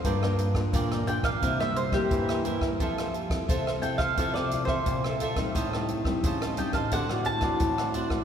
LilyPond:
<<
  \new Staff \with { instrumentName = "Mandolin" } { \time 4/4 \key f \mixolydian \tempo 4 = 87 r4. g''16 f''8 e''16 c''16 g'8. r8 | r4. g''16 f''8 d''8 c''8. r8 | r4. g''16 f''16 fis''8 a''4 r8 | }
  \new Staff \with { instrumentName = "Cavaquinho" } { \time 4/4 \key f \mixolydian <f' bes' d'' g''>16 <bes' d'' g''>16 r8 <f' bes' d'' g''>16 <bes' d'' g''>16 <f' bes' d'' g''>16 <bes' d'' g''>16 <e' bes' c'' e''>16 <bes' c'' e''>16 r16 <bes' c'' e''>8 <bes' c'' e''>16 <e' bes' c'' e''>16 <bes' c'' e''>16 | <f' a' c'' e''>16 <a' c'' e''>16 r8 <f' a' c'' e''>16 <a' c'' e''>16 <f' a' c'' e''>16 <a' c'' e''>16 <f' a' c'' e''>16 <a' c'' e''>16 r16 <a' c'' e''>8 <a' c'' e''>16 <f' a' c'' e''>16 <a' c'' e''>16 | <g' c'' ees'' a''>16 <c'' ees'' a''>16 r8 <g' c'' ees'' a''>16 <c'' ees'' a''>16 <g' c'' ees'' a''>16 <c'' ees'' a''>16 <d' c'' d'' fis''>16 <c'' d'' fis''>16 r16 <c'' d'' fis''>8 <c'' d'' fis''>16 <d' c'' d'' fis''>16 <c'' d'' fis''>16 | }
  \new Staff \with { instrumentName = "Nylon-string guitar" } { \time 4/4 \key f \mixolydian << { <f bes d'>16 <f bes d'>8 <f bes d'>8. <f bes d'>8 <g bes e'>16 <g bes e'>8 <g bes e'>8. <g bes e'>16 r16 | <c' e' a'>8 r16 <c' e' a'>8. <c' e' a'>8 <c' e' a'>16 r16 <c' e' a'>8 r16 <c' e' a'>8 <g c' ees'>16~ | <g c' ees'>16 <g c' ees'>8 <g c' ees'>8. <g c' ees'>8 <a c' fis'>16 <a c' fis'>8 <a c' fis'>8. <a c' fis'>16 r16 | } \\ { g,4 d4 c4 g,4 | f4 c4 f4 c4 | a,4 a,4 d4 a,4 | } >> }
  \new Staff \with { instrumentName = "Nylon-string guitar" } { \clef bass \time 4/4 \key f \mixolydian g,4 bes,4 c16 g8. e4 | f4 c4 c16 c8. bes,4 | a,4 cis4 d16 a,8. a,4 | }
  \new DrumStaff \with { instrumentName = "Drums" } \drummode { \time 4/4 <hh bd>16 ss16 hh16 <bd ss>16 <hh bd>16 <hh ss>16 hh16 <hh bd ss>16 <hh bd>16 ss16 hh16 <hh bd ss>16 <hh bd>16 <hh ss>16 hh16 <bd ss>16 | <hh bd>16 <hh ss>16 hh16 <hh bd ss>16 <hh bd>16 ss16 hh16 <hh bd ss>16 <hh bd>16 ss16 hh16 <bd ss>16 <hh bd>16 ss16 hh16 <hh bd ss>16 | <hh bd>16 ss16 hh16 <bd ss>16 <hh bd>16 <hh ss>16 hh16 <hh bd ss>16 <hh bd>16 ss16 hh16 <hh bd ss>16 <hh bd>16 <hh ss>16 hh16 <bd ss>16 | }
>>